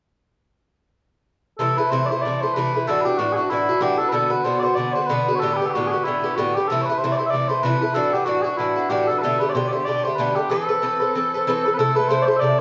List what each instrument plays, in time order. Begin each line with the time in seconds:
1.58 bouzouki C3 E3 A3 E4, bagpipes A4
1.77 bouzouki E3 A3 E4, bagpipes B4
1.91 bouzouki C3 E3 A3 E4, bagpipes C5
2.06 bagpipes C5 D5
2.11 bouzouki E3 A3 E4
2.22 bouzouki C3, bagpipes D5
2.26 bouzouki E3 A3 E4
2.41 bouzouki A3 E4, bagpipes C5
2.45 bouzouki E3
2.54 bouzouki C3 E3 A3, bagpipes B4
2.58 bouzouki E4
2.74 bouzouki E3 A3 E4
2.87 bouzouki A2 E3 D4 F#4, bagpipes A4
3.01 bagpipes B4
3.05 bouzouki E3 D4 F#4, bagpipes G4
3.17 bouzouki A2 E3 D4 F#4, bagpipes F#4
3.32 bagpipes F#4 G#4
3.37 bouzouki E3 D4 F#4
3.50 bouzouki A2 E3 D4 F#4, bagpipes E4
3.69 bouzouki E3 D4 F#4
3.81 bouzouki A2 E3 D4 F#4, bagpipes G4
3.98 bouzouki E3 D4 F#4, bagpipes A4
4.08 bouzouki B2, bagpipes A4 B4
4.13 bouzouki D3 B3 F#4
4.30 bouzouki D3 B3 F#4, bagpipes B4
4.44 bouzouki B2 D3 B3 F#4, bagpipes C5
4.59 bouzouki F#4, bagpipes C5 D5
4.64 bouzouki D3 B3
4.75 bouzouki B2 D3, bagpipes D5
4.79 bouzouki B3 F#4
4.93 bouzouki B3 F#4, bagpipes C5
4.98 bouzouki D3
5.07 bouzouki B2 D3 B3, bagpipes B4
5.12 bouzouki F#4
5.28 bouzouki D3 B3 F#4
5.35 bagpipes A4 C#5
5.42 bouzouki A2 D3 B3 G4
5.53 bagpipes G4 B4
5.62 bouzouki D3 B3 G4
5.66 bagpipes G4 A4
5.72 bouzouki A2 D3, bagpipes F#4
5.77 bouzouki B3 G4
5.87 bagpipes G#4
5.91 bouzouki B3 G4, bagpipes F#4
5.96 bouzouki D3
6.04 bouzouki A2 D3 B3 G4, bagpipes E4
6.24 bouzouki D3 B3 G4
6.36 bouzouki A2 D3 B3 G4, bagpipes F#4
6.55 bouzouki B3 G4, bagpipes G4
6.60 bouzouki D3
6.68 bouzouki C3 E3, bagpipes A4
6.72 bouzouki A3 E4
6.82 bagpipes B4 C#5
6.90 bouzouki E3 A3 E4
6.98 bagpipes C5
7.04 bouzouki C3 E3 A3 E4
7.12 bagpipes D5
7.16 bouzouki E4, bagpipes C5
7.20 bouzouki E3 A3
7.26 bagpipes D5 E5
7.32 bouzouki C3 E3 A3 E4
7.48 bouzouki A3 E4, bagpipes C5
7.52 bouzouki E3
7.63 bouzouki C3 E3 A3 E4, bagpipes B4
7.82 bouzouki E3 A3 E4
7.94 bouzouki A2 E3 D4 F#4, bagpipes A4
8.13 bouzouki E3 D4 F#4, bagpipes G4
8.25 bouzouki A2 E3 D4 F#4, bagpipes F#4
8.42 bouzouki F#4, bagpipes F#4 G#4
8.46 bouzouki E3 D4
8.57 bouzouki A2 E3 D4 F#4, bagpipes E4
8.76 bouzouki E3 D4 F#4
8.90 bouzouki A2 E3 D4 F#4, bagpipes G4
9.08 bouzouki D4 F#4, bagpipes A4
9.12 bouzouki E3
9.18 bagpipes A4 B4
9.23 bouzouki B2 D3 A3 G4
9.39 bouzouki A3 G4, bagpipes B4
9.44 bouzouki D3
9.50 bagpipes C5 D5
9.55 bouzouki B2 D3 A3 G4
9.68 bagpipes D5
9.72 bouzouki D3 A3 G4, bagpipes C5
9.85 bouzouki B2 D3 A3, bagpipes D5
9.89 bouzouki G4
10.04 bouzouki D3 A3 G4, bagpipes C5
10.16 bouzouki B2 D3, bagpipes B4
10.20 bouzouki A3 G4
10.35 bouzouki D3 A3 G4, bagpipes G4
10.50 bouzouki E3 C4 A4 B4, bagpipes A4
10.69 bouzouki C4 A4 B4
10.82 bouzouki E3 C4 A4 B4
11.00 bouzouki C4 A4 B4
11.15 bouzouki E3 C4 A4 B4
11.34 bouzouki C4 A4 B4
11.47 bouzouki E3 C4 A4 B4
11.65 bouzouki C4 A4 B4
11.74 bagpipes A4 B4, flute A4
11.79 bouzouki C3 A3 E4 A4
11.95 bouzouki E4 A4, flute B4, bagpipes B4
12.00 bouzouki A3
12.09 bouzouki C3 A3 E4 A4, bagpipes C5, flute C5
12.22 bagpipes C5 D5
12.28 bouzouki A3 E4 A4
12.36 bagpipes D5 E5
12.41 bouzouki C3 A3 E4 A4, flute D5